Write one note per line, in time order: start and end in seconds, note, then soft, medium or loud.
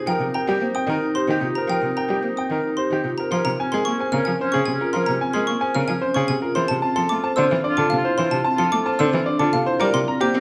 0.00 0.11 G#4 medium
0.00 0.11 C5 medium
0.00 0.11 G#5 medium
0.06 0.17 F3 medium
0.06 3.13 D#4 medium
0.06 0.25 A#4 medium
0.06 0.24 G5 medium
0.20 0.30 C3 medium
0.20 0.38 C4 medium
0.34 0.51 A#4 medium
0.34 0.52 G5 medium
0.34 0.51 A#5 medium
0.48 0.58 G3 medium
0.48 0.65 G4 medium
0.61 0.71 A#3 medium
0.61 0.78 C5 medium
0.75 0.92 C4 medium
0.75 0.92 G5 medium
0.75 0.92 D#6 medium
0.87 0.97 D#3 loud
0.87 1.06 A#4 medium
1.01 1.19 D#4 medium
1.15 1.32 G4 medium
1.15 1.33 C5 medium
1.15 1.32 C6 medium
1.28 1.38 D#3 medium
1.28 1.47 G4 loud
1.41 1.51 C3 medium
1.41 1.60 F4 medium
1.55 1.70 A#4 medium
1.55 1.73 C5 medium
1.55 1.73 A#5 medium
1.67 1.78 F3 medium
1.67 1.87 A#4 medium
1.67 1.87 G5 medium
1.81 1.92 C3 medium
1.81 2.00 C4 medium
1.96 2.14 A#4 medium
1.96 2.14 G5 medium
1.96 2.14 A#5 medium
2.09 2.19 G3 medium
2.09 2.27 G4 medium
2.22 2.33 A#3 medium
2.22 2.40 C5 medium
2.36 2.54 C4 medium
2.36 2.55 G5 medium
2.36 2.54 D#6 medium
2.50 2.60 D#3 medium
2.50 2.68 A#4 medium
2.64 2.81 D#4 medium
2.77 2.94 G4 medium
2.77 2.95 C5 medium
2.77 2.94 C6 medium
2.91 3.01 D#3 medium
2.91 3.09 G4 medium
3.04 3.14 C3 medium
3.04 3.22 F4 medium
3.18 3.31 A#4 medium
3.18 3.31 C5 medium
3.18 3.35 A#5 medium
3.31 3.41 F3 medium
3.31 3.51 C#4 soft
3.31 3.49 A#4 medium
3.31 3.49 C5 medium
3.31 3.49 C6 medium
3.45 3.55 C3 medium
3.45 3.62 A#5 medium
3.59 3.76 C4 medium
3.59 3.79 C#4 medium
3.59 3.76 G#5 medium
3.72 3.82 G#3 medium
3.72 3.90 G#4 medium
3.72 3.89 A#4 medium
3.72 3.89 C6 medium
3.85 3.96 A#3 medium
3.85 4.08 C#4 medium
3.85 4.03 C#6 medium
4.00 4.16 C5 medium
4.00 4.17 G#5 medium
4.12 4.22 C#3 loud
4.12 4.30 C4 medium
4.12 4.35 C#4 medium
4.12 4.30 A#4 medium
4.12 4.30 F6 medium
4.25 4.36 F3 medium
4.25 4.43 G#5 medium
4.40 4.57 C#4 medium
4.40 4.57 C5 medium
4.44 4.64 C#4 medium
4.52 4.64 C#3 medium
4.52 4.70 G#4 medium
4.52 4.71 G#4 medium
4.52 4.70 C#6 medium
4.66 4.77 C3 medium
4.66 4.83 G#5 medium
4.73 4.92 C#4 medium
4.81 4.98 F4 medium
4.81 4.92 A#4 medium
4.93 5.04 F3 medium
4.93 5.11 A#4 medium
4.93 5.11 C5 medium
4.93 5.11 C6 medium
5.01 5.20 C#4 medium
5.06 5.18 C3 medium
5.06 5.24 A#5 medium
5.21 5.38 C4 medium
5.21 5.38 G#5 medium
5.29 5.49 C#4 medium
5.33 5.44 G#3 medium
5.33 5.51 G#4 medium
5.33 5.51 A#4 medium
5.33 5.51 C6 medium
5.47 5.58 A#3 medium
5.47 5.65 C#6 medium
5.57 5.77 C#4 medium
5.61 5.78 C5 medium
5.61 5.78 G#5 medium
5.75 5.85 C#3 medium
5.75 5.92 C4 medium
5.75 5.92 A#4 medium
5.75 5.92 F6 medium
5.86 5.98 F3 medium
5.86 6.05 C#4 soft
5.86 6.05 G#5 medium
6.02 6.19 C#4 medium
6.02 6.19 C5 medium
6.14 6.25 C#3 medium
6.14 6.33 C#4 medium
6.14 6.33 G#4 medium
6.14 6.33 G#4 loud
6.14 6.32 C#6 medium
6.28 6.39 C3 medium
6.28 6.46 G#5 medium
6.42 6.59 F4 medium
6.42 6.59 A#4 medium
6.55 6.66 E3 medium
6.55 6.75 F4 soft
6.55 6.73 C5 medium
6.55 6.73 C6 medium
6.68 6.80 C3 medium
6.68 6.86 A5 medium
6.82 7.00 C4 medium
6.82 7.04 F4 medium
6.82 7.00 A5 medium
6.96 7.07 F3 medium
6.96 7.13 A4 loud
6.96 7.14 A4 medium
6.96 7.13 C6 medium
7.09 7.21 A3 medium
7.09 7.32 F4 medium
7.09 7.27 D6 medium
7.24 7.41 C5 medium
7.24 7.41 A5 medium
7.36 7.47 D3 loud
7.36 7.54 C4 medium
7.36 7.54 C5 loud
7.36 7.54 E6 medium
7.40 7.60 F4 medium
7.52 7.61 E3 medium
7.64 7.81 D4 medium
7.64 7.81 D5 medium
7.69 7.89 F4 loud
7.77 7.88 D3 medium
7.77 7.95 F4 medium
7.77 7.95 A4 medium
7.77 7.95 D6 medium
7.90 8.01 C3 medium
7.90 8.08 F5 medium
7.97 8.17 F4 medium
8.05 8.22 E4 medium
8.05 8.17 C5 medium
8.18 8.28 E3 medium
8.18 8.35 C5 medium
8.18 8.35 C6 medium
8.25 8.45 F4 medium
8.31 8.42 C3 medium
8.31 8.49 A5 medium
8.44 8.62 C4 medium
8.44 8.62 A5 medium
8.53 8.73 F4 medium
8.58 8.68 F3 medium
8.58 8.76 A4 loud
8.58 8.76 A4 medium
8.58 8.76 C6 medium
8.72 8.82 A3 medium
8.72 8.89 D6 loud
8.82 9.02 F4 medium
8.82 9.03 C5 medium
8.82 9.03 A5 medium
8.99 9.09 D3 loud
8.99 9.16 C4 medium
8.99 9.16 C5 loud
8.99 9.16 E6 medium
9.10 9.23 E3 medium
9.10 9.30 F4 medium
9.26 9.44 D4 medium
9.26 9.43 D5 medium
9.38 9.50 D3 loud
9.38 9.58 F4 medium
9.38 9.57 F4 medium
9.38 9.57 A4 loud
9.38 9.57 D6 medium
9.53 9.64 C3 medium
9.53 9.70 F5 medium
9.66 9.84 E4 medium
9.66 9.84 C5 medium
9.80 9.90 G3 loud
9.80 9.97 A#4 loud
9.80 10.00 A#4 soft
9.80 9.97 D5 medium
9.80 9.98 D6 medium
9.94 10.04 C3 medium
9.94 10.11 C6 loud
10.08 10.25 C4 medium
10.08 10.28 A#4 medium
10.08 10.25 A#5 medium
10.20 10.31 A#3 loud
10.20 10.38 G4 loud
10.20 10.38 C5 medium
10.20 10.38 D6 medium
10.34 10.40 C4 medium
10.34 10.40 A#4 medium